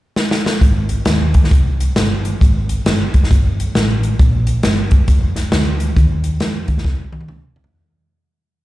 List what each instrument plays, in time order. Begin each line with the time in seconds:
0.16 snare
0.31 snare
0.46 snare
0.61 fingered electric bass G#1, kick, closed hi-hat
0.89 closed hi-hat
1.05 fingered electric bass D#2, snare, closed hi-hat
1.34 kick, closed hi-hat
1.44 snare
1.51 fingered electric bass C2, kick, closed hi-hat
1.80 closed hi-hat
1.96 fingered electric bass G1, snare, closed hi-hat
2.25 closed hi-hat
2.41 fingered electric bass G#1, kick, closed hi-hat
2.69 closed hi-hat
2.86 fingered electric bass G1, snare, closed hi-hat
3.14 fingered electric bass F1, kick, closed hi-hat
3.24 snare
3.31 fingered electric bass G1, kick, closed hi-hat
3.60 closed hi-hat
3.75 fingered electric bass A1, snare, closed hi-hat
4.03 closed hi-hat
4.19 fingered electric bass A#1, kick, closed hi-hat
4.47 closed hi-hat
4.63 fingered electric bass G1, snare, closed hi-hat
4.91 kick, closed hi-hat
5.08 fingered electric bass F1, kick, closed hi-hat
5.36 snare, closed hi-hat
5.52 fingered electric bass D2, snare, closed hi-hat
5.80 closed hi-hat
5.96 fingered electric bass D#2, kick, closed hi-hat
6.24 closed hi-hat
6.40 fingered electric bass F2, snare, closed hi-hat
6.68 fingered electric bass D#2, kick, closed hi-hat
6.78 snare
6.85 fingered electric bass C2, kick, snare
7.12 high tom
7.21 high tom
7.28 fingered electric bass C#2, mid tom
7.56 floor tom
7.64 floor tom